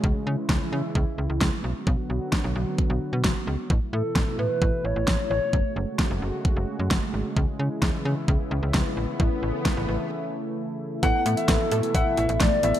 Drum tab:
HH |----------------|----------------|----------------|----------------|
SD |----o-------o---|----o-------o---|----o-------o---|----o-------o---|
BD |o---o---o---o---|o---o---o---o---|o---o---o---o---|o---o---o---o---|

HH |----------------|----------------|x-xxx-xxx-xxx-xx|
SD |----o-------o---|----o-----------|----o-------o---|
BD |o---o---o---o---|o---o-----------|o---o---o---o---|